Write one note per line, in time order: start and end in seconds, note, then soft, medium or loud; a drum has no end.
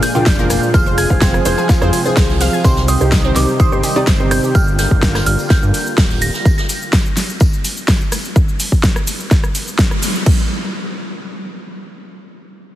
0.00 0.70 D3 medium
0.00 2.61 F3 medium
0.00 0.72 G#3 medium
0.00 0.70 A#3 medium
0.00 2.61 F4 medium
0.00 0.09 G#4 medium
0.00 0.70 G6 loud
0.00 open hi-hat loud
0.00 tambourine medium
0.00 shaker medium
0.15 0.21 A#2 loud
0.15 0.21 D4 medium
0.15 0.19 F4 medium
0.15 0.21 F4 medium
0.15 0.21 G#4 medium
0.15 0.21 A#4 medium
0.15 0.21 G5 loud
0.15 shaker soft
0.26 0.58 F1 loud
0.26 0.33 D4 medium
0.26 kick loud
0.26 snare loud
0.26 tambourine medium
0.26 shaker soft
0.39 0.71 A#2 medium
0.39 0.43 A#3 loud
0.39 0.71 D4 medium
0.39 0.71 F4 medium
0.39 0.71 G#4 medium
0.39 0.71 A#4 medium
0.39 0.71 F5 loud
0.39 shaker soft
0.50 cross-stick medium
0.50 open hi-hat loud
0.50 tambourine medium
0.50 shaker medium
0.63 shaker soft
0.74 1.05 F1 loud
0.74 4.51 C3 medium
0.74 0.84 F3 loud
0.74 2.63 G#3 medium
0.74 0.84 F4 medium
0.74 0.84 G#4 medium
0.74 2.63 G#4 medium
0.74 0.84 C5 loud
0.74 0.79 C5 loud
0.74 0.99 F6 loud
0.74 kick loud
0.74 tambourine medium
0.74 shaker soft
0.86 0.91 C5 medium
0.86 shaker soft
0.98 1.05 G#4 medium
0.98 1.65 G#6 loud
0.98 open hi-hat loud
0.98 tambourine medium
0.98 shaker medium
1.10 1.41 F1 medium
1.10 1.43 F3 medium
1.10 1.14 F4 medium
1.10 1.43 F4 medium
1.10 1.43 G#4 medium
1.10 1.43 C5 medium
1.10 kick medium
1.10 shaker soft
1.21 1.26 C4 loud
1.21 kick loud
1.21 snare loud
1.21 tambourine medium
1.21 shaker soft
1.34 cross-stick medium
1.34 shaker soft
1.45 1.55 F1 medium
1.45 1.79 F3 medium
1.45 1.79 F4 medium
1.45 1.79 G#4 medium
1.45 1.52 C5 medium
1.45 1.79 C5 loud
1.45 open hi-hat loud
1.45 tambourine medium
1.45 shaker medium
1.58 1.62 G#4 medium
1.58 shaker soft
1.69 1.76 F4 medium
1.69 kick loud
1.69 snare medium
1.69 tambourine medium
1.69 shaker soft
1.82 1.90 F2 medium
1.82 1.87 F3 medium
1.82 1.86 C4 loud
1.82 1.87 F4 medium
1.82 1.87 G#4 medium
1.82 1.87 C5 loud
1.82 cross-stick medium
1.82 shaker soft
1.93 1.98 C5 medium
1.93 open hi-hat loud
1.93 tambourine medium
1.93 shaker medium
2.05 2.15 F3 medium
2.05 2.15 F4 medium
2.05 2.10 G#4 medium
2.05 2.15 G#4 medium
2.05 2.15 C5 medium
2.05 shaker soft
2.17 2.48 C2 medium
2.17 2.62 F3 medium
2.17 2.24 F4 loud
2.17 2.62 F4 medium
2.17 2.62 C5 loud
2.17 kick loud
2.17 snare loud
2.17 open hi-hat medium
2.17 shaker soft
2.29 snare soft
2.29 shaker soft
2.41 2.48 F5 loud
2.41 snare loud
2.41 open hi-hat loud
2.41 tambourine medium
2.41 shaker medium
2.53 2.57 G#5 medium
2.53 shaker soft
2.64 2.96 C2 loud
2.64 2.75 C3 loud
2.64 4.53 D#3 medium
2.64 6.42 G3 medium
2.64 2.69 C4 loud
2.64 2.75 D#4 medium
2.64 4.53 D#4 medium
2.64 2.75 G4 loud
2.64 6.42 G4 medium
2.64 2.75 C5 loud
2.64 2.89 C6 medium
2.64 kick loud
2.64 tambourine loud
2.64 shaker soft
2.77 snare medium
2.77 shaker soft
2.88 2.95 C5 medium
2.88 3.37 D#6 medium
2.88 open hi-hat loud
2.88 tambourine medium
2.88 shaker medium
3.01 3.31 C2 medium
3.01 3.33 C3 medium
3.01 3.33 D#4 medium
3.01 3.33 G4 medium
3.01 3.05 G4 medium
3.01 3.33 C5 medium
3.01 shaker soft
3.12 3.19 D#4 medium
3.12 kick loud
3.12 snare loud
3.12 tambourine medium
3.12 shaker soft
3.25 3.29 C4 loud
3.25 shaker soft
3.36 3.45 C2 medium
3.36 3.69 C3 medium
3.36 3.69 D#4 medium
3.36 3.69 G4 medium
3.36 3.69 C5 loud
3.36 3.61 D6 medium
3.36 snare medium
3.36 open hi-hat loud
3.36 tambourine medium
3.36 shaker medium
3.48 shaker soft
3.60 3.64 C5 loud
3.60 4.33 D#6 medium
3.60 kick loud
3.60 tambourine medium
3.60 shaker soft
3.72 3.81 G1 medium
3.72 3.78 C3 medium
3.72 3.78 D#4 medium
3.72 3.78 G4 medium
3.72 3.78 C5 loud
3.72 3.76 C5 medium
3.72 shaker soft
3.83 3.90 G4 medium
3.83 open hi-hat loud
3.83 tambourine medium
3.83 shaker medium
3.96 4.02 C3 loud
3.96 4.02 D#4 medium
3.96 4.00 D#4 medium
3.96 4.02 G4 medium
3.96 4.02 D5 loud
3.96 shaker soft
4.07 4.39 G1 medium
4.07 4.12 C4 loud
4.07 kick loud
4.07 snare loud
4.07 tambourine loud
4.07 shaker soft
4.20 4.52 C3 loud
4.20 4.52 D#4 medium
4.20 4.52 G4 medium
4.20 4.52 C5 loud
4.20 shaker soft
4.31 4.38 C5 medium
4.31 4.56 G6 loud
4.31 cross-stick medium
4.31 open hi-hat loud
4.31 tambourine medium
4.31 shaker medium
4.44 4.48 G4 medium
4.44 shaker soft
4.55 4.86 G1 loud
4.55 6.44 D3 medium
4.55 6.44 A#3 medium
4.55 6.44 F4 medium
4.55 4.77 F6 loud
4.55 kick loud
4.55 tambourine loud
4.55 shaker soft
4.68 shaker soft
4.79 5.28 G6 loud
4.79 snare loud
4.79 open hi-hat loud
4.79 tambourine medium
4.79 shaker medium
4.91 5.22 G1 medium
4.91 kick medium
4.91 shaker soft
5.02 kick loud
5.02 snare loud
5.02 tambourine medium
5.02 shaker soft
5.15 cross-stick medium
5.15 snare loud
5.15 tambourine medium
5.15 shaker soft
5.26 5.36 G1 loud
5.26 5.51 F6 loud
5.26 open hi-hat loud
5.26 shaker medium
5.39 tambourine medium
5.39 shaker soft
5.50 6.18 G6 loud
5.50 kick loud
5.50 snare medium
5.50 snare loud
5.50 tambourine medium
5.50 shaker soft
5.63 5.71 G2 medium
5.63 shaker soft
5.74 open hi-hat loud
5.74 tambourine medium
5.74 shaker medium
5.87 shaker soft
5.98 6.29 D1 loud
5.98 kick loud
5.98 snare loud
5.98 open hi-hat medium
5.98 shaker soft
6.10 snare soft
6.10 shaker soft
6.21 6.44 A#6 loud
6.21 open hi-hat loud
6.21 tambourine medium
6.21 shaker medium
6.34 snare medium
6.34 shaker soft
6.45 kick loud
6.45 tambourine medium
6.45 shaker soft
6.58 snare medium
6.58 shaker soft
6.69 open hi-hat loud
6.69 tambourine medium
6.69 shaker medium
6.82 shaker soft
6.93 kick loud
6.93 snare loud
6.93 tambourine loud
6.93 shaker soft
7.06 shaker soft
7.17 snare medium
7.17 open hi-hat loud
7.17 tambourine medium
7.17 shaker medium
7.30 shaker soft
7.40 kick loud
7.40 tambourine medium
7.40 shaker soft
7.53 shaker soft
7.65 open hi-hat loud
7.65 tambourine medium
7.65 shaker medium
7.77 shaker soft
7.88 kick loud
7.88 snare loud
7.88 tambourine medium
7.88 shaker soft
8.01 shaker soft
8.12 cross-stick medium
8.12 open hi-hat loud
8.12 tambourine medium
8.12 shaker medium
8.25 shaker soft
8.36 kick loud
8.36 shaker soft
8.49 shaker soft
8.60 open hi-hat loud
8.60 shaker medium
8.72 kick medium
8.72 shaker soft
8.83 kick loud
8.83 snare loud
8.83 shaker soft
8.96 cross-stick medium
8.96 shaker soft
9.07 open hi-hat loud
9.07 shaker medium
9.20 shaker soft
9.31 kick loud
9.31 snare medium
9.31 shaker soft
9.44 cross-stick medium
9.44 shaker soft
9.55 open hi-hat loud
9.55 shaker medium
9.68 shaker soft
9.79 kick loud
9.79 snare loud
9.79 shaker soft
9.91 cross-stick medium
9.91 shaker soft
10.03 open hi-hat loud
10.03 shaker medium
10.15 shaker soft
10.26 kick loud
10.26 crash medium